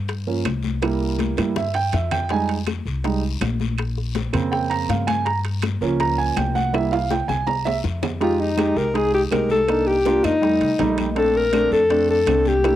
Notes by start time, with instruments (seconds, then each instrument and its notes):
Already playing: upright bass G2
0.08 high bongo, high conga, high timbale, long guiro
0.27 grand piano F3 A#3 C#4, high conga
0.45 upright bass C2, high bongo, low bongo, high conga, high timbale, short guiro, claves
0.63 high bongo, high conga, short guiro
0.82 grand piano G3 A#3 E4, high bongo, high timbale, long guiro, claves
1.01 high bongo, high conga
1.19 high bongo, high conga, high timbale, short guiro
1.37 upright bass G2, grand piano G3 A#3 E4, high bongo, high conga, high timbale, short guiro, claves
1.56 grand piano E5, high bongo, low conga, long guiro
1.74 grand piano G5, high timbale
1.93 upright bass F2, grand piano E5, high bongo, low bongo, high timbale, short guiro
2.11 grand piano G5, high bongo, low conga, high timbale, short guiro, claves
2.29 grand piano G3 G#3 D#4 G#5, high bongo, high conga, high timbale, long guiro
2.49 high bongo, high timbale
2.67 high bongo, high conga, high timbale, short guiro, claves
2.86 upright bass C2, high bongo, high conga, short guiro
3.04 grand piano G3 G#3 D#4, high bongo, high conga, high timbale, long guiro
3.23 high conga
3.41 upright bass A#1, high bongo, low bongo, high conga, high timbale, low timbale, short guiro, claves
3.60 high bongo, high conga, short guiro
3.78 high bongo, high conga, high timbale, long guiro, claves
3.97 high bongo, high conga
4.15 high bongo, high conga, high timbale, short guiro
4.33 upright bass F2, grand piano C#3 A#3 C4, high bongo, low conga, high timbale, short guiro, claves
4.52 grand piano G5, high bongo, high conga, long guiro
4.70 grand piano A#5, high conga, high timbale
4.89 upright bass G2, grand piano F5, high bongo, low bongo, high conga, high timbale, short guiro
5.07 grand piano G#5, high bongo, high conga, high timbale, short guiro, claves
5.26 grand piano A#5, high bongo, high conga, high timbale, long guiro
5.45 high bongo, high conga, high timbale
5.62 high bongo, high conga, high timbale, short guiro, claves
5.81 upright bass C#2, grand piano F3 A#3 C#4, high bongo, high conga, short guiro
6.00 grand piano A#5, high bongo, high conga, high timbale, long guiro
6.18 grand piano G#5, high conga
6.37 upright bass C2, grand piano G5, high bongo, low bongo, high conga, high timbale, low timbale, short guiro, claves
6.55 grand piano F#5, high bongo, high conga, short guiro
6.73 grand piano G3 A#3 E4 E5, high bongo, high timbale, long guiro, claves
6.92 grand piano F5, high bongo, high timbale
7.10 grand piano G5, high bongo, high conga, high timbale, short guiro
7.28 upright bass C2, grand piano G#5, high bongo, low conga, short guiro, claves
7.47 grand piano A#5, low bongo, high conga, low timbale, long guiro
7.65 grand piano E5, low bongo, high conga, low timbale
7.84 upright bass F2, low bongo, short guiro
8.03 low bongo, low conga, low timbale, short guiro, claves
8.20 grand piano G#3 D#4 G4, alto saxophone F4, high bongo, high timbale, long guiro
8.39 alto saxophone D#4, high bongo, high conga
8.57 grand piano G#3 D#4 G4, high bongo, high conga, high timbale, low timbale, short guiro, claves
8.76 upright bass C2, alto saxophone A#4, high conga, short guiro
8.94 grand piano G#3 D#4 G#4, alto saxophone G#4, high bongo, high timbale, long guiro
9.14 alto saxophone G4, high bongo, high conga
9.31 upright bass C2, grand piano G#3 D#4 G4, alto saxophone A#4, high bongo, low bongo, high conga, high timbale, low timbale, short guiro, claves
9.50 alto saxophone A4, high bongo, high conga, short guiro
9.68 grand piano A#3 D4 D#4, high bongo, high conga, high timbale, long guiro, claves
9.87 alto saxophone G4, high bongo, high conga
10.05 grand piano A#3 D4 F4, high bongo, high conga, high timbale, low timbale, short guiro
10.24 upright bass F2, alto saxophone D#4, high conga, high timbale, short guiro, claves
10.42 grand piano G3 A3 D#4, high bongo, high conga, long guiro
10.61 upright bass C2, high bongo, high conga, high timbale
10.79 upright bass A#1, grand piano G3 A3 D#4 G5, high bongo, low bongo, high conga, high timbale, low timbale, short guiro
10.98 grand piano D#5, high bongo, high conga, high timbale, short guiro, claves
11.16 grand piano A3 C4 D4, alto saxophone A4, high bongo, high conga, high timbale, long guiro
11.35 alto saxophone A#4, high bongo, high conga
11.52 grand piano A3 C4 D4, high bongo, high conga, high timbale, low timbale, short guiro, claves
11.71 upright bass F2, alto saxophone A4, high conga, short guiro
11.90 grand piano A3 C4 D4, high bongo, high timbale, long guiro
12.09 alto saxophone A4, high bongo, high conga
12.27 upright bass C2, grand piano A3 C4 D4, high bongo, low bongo, high conga, high timbale, low timbale, short guiro, claves
12.45 alto saxophone G4, high bongo, high conga, short guiro
12.64 grand piano A3 A#3 D4 E4, high bongo, high conga, high timbale, long guiro, claves